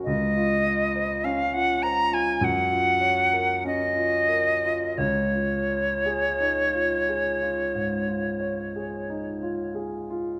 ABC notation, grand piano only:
X:1
M:4/4
L:1/16
Q:1/4=45
K:Db
V:1 name="Grand piano"
D,, F e c D F c F G,, F d B D F B F | D,, F d A E F A F A,, F d A E F A F |]